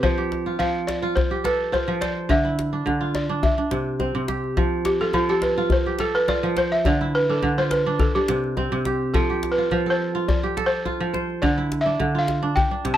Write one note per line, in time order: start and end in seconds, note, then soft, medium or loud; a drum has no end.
0.00 0.58 F3 medium
0.00 1.26 C4 medium
0.00 0.72 D4 medium
0.00 0.17 G4 medium
0.00 0.61 C5 medium
0.00 djembe tone medium
0.00 djembe bass medium
0.18 1.30 G4 medium
0.32 djembe slap medium
0.46 1.02 F4 medium
0.59 1.86 F3 medium
0.59 0.72 F5 medium
0.59 djembe tone medium
0.75 djembe slap soft
0.87 1.17 D5 medium
0.87 djembe slap medium
1.02 1.72 F4 medium
1.02 djembe slap soft
1.15 1.45 C5 medium
1.15 djembe slap soft
1.15 djembe tone medium
1.15 djembe bass medium
1.31 2.72 G4 medium
1.31 djembe slap soft
1.44 2.76 A4 medium
1.44 1.74 B4 medium
1.44 djembe slap medium
1.61 djembe slap soft
1.72 2.51 F4 medium
1.72 2.02 C5 medium
1.72 djembe tone medium
1.88 2.34 F3 medium
2.01 3.20 C5 medium
2.01 2.14 D5 medium
2.01 djembe slap medium
2.17 djembe slap soft
2.29 2.85 D3 medium
2.29 3.18 E5 medium
2.29 djembe tone medium
2.29 djembe bass medium
2.45 3.07 E4 medium
2.45 djembe slap soft
2.59 djembe slap medium
2.73 3.29 D4 medium
2.73 djembe slap soft
2.86 3.48 D3 medium
2.86 djembe tone medium
3.01 4.52 F4 medium
3.15 3.41 D5 medium
3.15 djembe slap medium
3.29 3.57 D4 medium
3.43 4.25 E5 medium
3.43 djembe tone medium
3.43 djembe bass medium
3.58 5.26 D4 medium
3.58 djembe slap soft
3.71 4.14 C3 medium
3.71 djembe slap medium
4.00 5.80 C4 medium
4.00 djembe slap soft
4.00 djembe tone medium
4.15 4.62 C3 medium
4.28 5.70 G4 medium
4.28 djembe slap medium
4.44 djembe slap soft
4.57 5.13 F3 medium
4.57 djembe tone medium
4.57 djembe bass medium
4.85 5.00 G4 medium
4.85 djembe slap medium
5.01 5.57 F4 medium
5.01 5.15 A4 medium
5.13 6.42 F3 medium
5.13 5.30 F4 medium
5.13 djembe tone medium
5.28 5.43 G4 medium
5.28 5.99 A4 medium
5.28 djembe slap soft
5.42 5.72 B4 medium
5.42 djembe slap medium
5.57 6.28 F4 medium
5.57 djembe slap soft
5.70 6.01 C5 medium
5.70 djembe slap soft
5.70 djembe tone medium
5.70 djembe bass medium
5.85 7.28 G4 medium
5.85 djembe slap soft
5.99 7.31 A4 medium
5.99 6.16 A4 medium
5.99 djembe slap medium
6.15 6.27 B4 medium
6.15 djembe slap soft
6.28 7.07 F4 medium
6.28 6.58 D5 loud
6.28 djembe tone medium
6.43 6.91 F3 medium
6.57 7.76 C5 medium
6.57 6.71 C5 medium
6.57 djembe slap medium
6.72 6.78 E5 medium
6.72 djembe slap soft
6.85 7.41 D3 medium
6.85 7.15 D5 medium
6.85 djembe tone medium
6.85 djembe bass medium
7.01 7.64 E4 medium
7.15 7.30 B4 medium
7.29 7.86 D4 medium
7.29 7.56 A4 medium
7.42 8.05 D3 medium
7.42 djembe tone medium
7.58 9.09 F4 medium
7.58 7.72 C5 medium
7.58 djembe slap soft
7.71 7.84 B4 medium
7.71 djembe slap medium
7.86 8.15 D4 medium
7.86 djembe slap soft
7.99 8.15 A4 medium
7.99 djembe slap soft
7.99 djembe tone medium
7.99 djembe bass medium
8.15 9.83 D4 medium
8.15 8.68 G4 medium
8.15 djembe slap soft
8.28 8.71 C3 medium
8.28 djembe slap medium
8.44 djembe slap soft
8.57 10.37 C4 medium
8.57 djembe tone medium
8.72 9.19 C3 medium
8.85 9.29 G4 medium
8.85 djembe slap medium
9.14 9.70 F3 medium
9.14 9.53 A4 medium
9.14 djembe tone medium
9.14 djembe bass medium
9.30 10.43 G4 medium
9.43 djembe slap medium
9.52 9.91 B4 medium
9.58 10.14 F4 medium
9.71 10.99 F3 medium
9.71 djembe tone medium
9.86 10.56 A4 medium
9.86 djembe slap soft
9.90 10.30 C5 medium
10.15 10.85 F4 medium
10.15 djembe slap soft
10.28 10.68 D5 medium
10.28 djembe slap soft
10.28 djembe tone medium
10.28 djembe bass medium
10.43 11.85 G4 medium
10.43 djembe slap soft
10.57 11.89 A4 medium
10.57 djembe slap medium
10.66 11.20 C5 medium
10.73 djembe slap soft
10.85 11.64 F4 medium
10.85 djembe tone medium
11.00 11.48 F3 medium
11.14 12.32 C5 medium
11.14 djembe slap medium
11.30 djembe slap soft
11.42 11.98 D3 medium
11.42 11.81 D5 medium
11.42 djembe tone medium
11.42 djembe bass soft
11.58 12.21 E4 medium
11.72 djembe slap medium
11.81 12.20 E5 medium
11.86 12.42 D4 medium
11.86 djembe slap soft
11.99 12.62 D3 medium
11.99 djembe slap soft
11.99 djembe tone medium
12.15 12.97 F4 medium
12.15 12.58 F5 medium
12.28 djembe slap medium
12.43 12.71 D4 medium
12.43 djembe slap soft
12.56 12.91 G5 medium
12.56 djembe tone medium
12.56 djembe bass medium
12.71 12.97 D4 medium
12.85 12.97 C3 medium
12.85 djembe slap medium
12.94 12.97 A5 loud